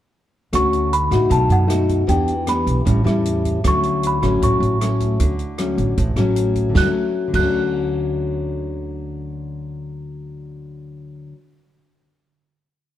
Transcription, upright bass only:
0.53 1.07 D2 medium
1.11 1.29 A1 medium
1.30 1.48 B1 medium
1.49 2.04 F#2 medium
2.09 2.63 E2 medium
2.67 2.85 B1 medium
2.86 3.04 A1 medium
3.04 3.59 E2 medium
3.64 4.19 D2 medium
4.23 4.41 A1 medium
4.42 4.60 A1 medium
4.60 5.15 A1 medium
5.20 5.74 D2 medium
5.78 5.96 A1 medium
5.98 6.16 A1 medium
6.16 6.71 A1 medium
6.75 6.86 D2 medium
7.34 11.32 D2 medium

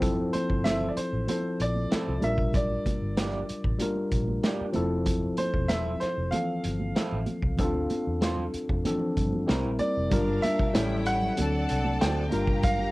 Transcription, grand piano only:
0.33 0.66 C5 medium
0.64 0.87 E5 medium
0.88 0.96 D5 medium
0.97 1.27 C5 medium
1.29 1.61 C5 medium
1.62 2.26 D5 medium
2.24 2.56 E5 medium
2.55 3.77 D5 medium
5.38 5.71 C5 medium
5.69 6.02 E5 medium
6.00 6.33 C5 medium
6.31 9.43 F5 medium
9.79 10.45 D5 medium
10.42 11.08 E5 medium
11.07 11.97 F#5 loud
12.01 12.66 G5 medium
12.64 12.91 F5 loud

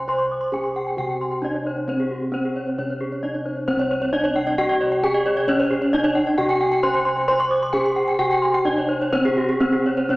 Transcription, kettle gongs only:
0.00 0.49 C3 medium
0.08 1.39 C5 soft
0.53 0.61 C#4 soft
0.98 2.29 C3 medium
1.43 1.51 C#4 soft
1.88 3.19 C4 medium
2.33 2.41 C#4 soft
2.78 4.09 C3 medium
3.23 3.31 C#4 soft
3.68 4.99 C4 medium
3.72 6.36 C2 medium
4.13 4.21 C#4 soft
5.03 5.11 C#4 soft
5.47 5.91 C#4 medium
5.92 6.00 C#4 soft
6.38 7.69 C3 medium
6.83 6.91 C#4 soft
7.28 8.62 C5 medium
7.73 7.81 C#4 soft
8.19 9.57 C3 medium
8.65 8.73 C#4 soft
9.12 10.16 C4 medium
9.60 9.68 C#4 soft
10.09 10.16 C3 medium

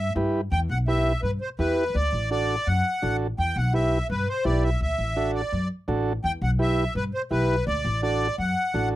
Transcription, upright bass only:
0.16 0.45 G2 medium
0.52 0.66 E2 loud
0.69 1.12 B1 loud
1.23 1.37 G2 medium
1.59 1.87 E2 medium
1.95 2.09 D2 medium
2.12 2.55 A1 loud
2.67 2.81 F#2 medium
3.03 3.31 A1 medium
3.38 3.52 E2 medium
3.56 3.99 B1 loud
4.10 4.24 G2 medium
4.45 4.74 B1 medium
4.81 4.95 D2 medium
4.98 5.41 A1 medium
5.52 5.67 F#2 medium
5.88 6.17 A1 medium
6.24 6.38 E2 medium
6.42 6.85 B1 loud
6.95 7.10 G2 medium
7.31 7.60 B1 medium
7.67 7.81 D2 loud
7.85 8.28 A1 loud
8.38 8.53 F#2 medium
8.74 8.96 A1 medium

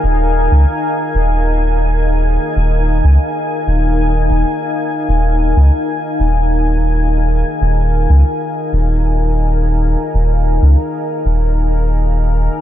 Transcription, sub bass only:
0.04 0.49 D#1 loud
0.52 0.65 C#2 medium
1.15 2.38 D#1 loud
2.56 3.01 D#1 loud
3.04 3.18 C#2 medium
3.67 4.30 D#1 loud
4.31 4.44 D#1 medium
5.09 5.54 D#1 loud
5.57 5.70 C#2 medium
6.20 7.43 D#1 loud
7.61 8.06 D#1 loud
8.10 8.23 C#2 medium
8.73 9.96 D#1 loud
10.14 10.59 D#1 loud
10.62 10.76 C#2 medium
11.25 12.49 D#1 loud

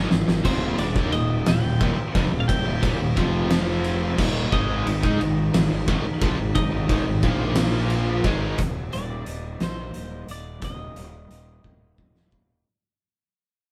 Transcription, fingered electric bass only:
0.00 0.10 G#1 loud
0.11 0.27 G#1 medium
0.27 0.44 G#1 medium
0.45 0.77 D#1 loud
0.78 0.95 D#1 medium
0.96 1.12 D#2 medium
1.13 1.45 D#1 medium
1.47 1.63 D#1 medium
1.64 1.80 D#1 medium
1.81 1.97 D#1 medium
1.99 muted fingered electric bass stroke soft
2.15 2.31 F1 loud
2.32 2.48 D#1 medium
2.49 2.65 D#1 medium
2.67 2.82 D#1 medium
2.83 2.99 D#1 loud
3.00 3.16 D#1 medium
3.17 4.15 F1 medium
4.19 4.50 D#1 medium
4.52 4.84 G#1 medium
4.86 5.02 G#1 medium
5.04 5.19 G#2 loud
5.21 5.52 G#1 medium
5.55 5.70 G#1 medium
5.72 5.87 G#1 medium
5.88 6.04 G#1 medium
6.05 muted fingered electric bass stroke soft
6.22 6.38 A#1 medium
6.39 6.55 G#1 medium
6.56 6.72 G#1 medium
6.72 6.88 G#1 medium
6.89 7.05 G#1 medium
7.06 7.22 G#1 medium
7.23 8.21 A#1 loud
8.24 8.56 G#1 medium
8.58 8.91 D#1 medium
8.94 9.26 D#1 medium
9.27 9.59 D#1 medium
9.61 9.93 A#1 medium
9.96 10.27 D#1 medium
10.28 10.61 D#1 medium
10.62 10.95 D#1 medium
10.96 11.28 D#1 medium
11.31 11.63 D#1 medium
11.64 11.97 D#1 medium
11.98 12.63 D#1 medium

